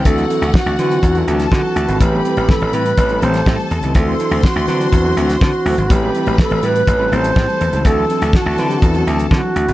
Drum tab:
HH |xxxx-xxxxxxx--xx|x-xx-xxxxxxx-xxx|x-xx--xxx-xx--ox|x-xx-xxxx-xx-xxx|
SD |----o------oo---|----o------oo---|----o------oo---|----o-------o---|
BD |o---o---o---o---|o---o---o---o---|o---o---o---o---|o---o---o---o---|

HH |x-xx--xxxxxx--xx|
SD |----o-------o---|
BD |o---o---o---o---|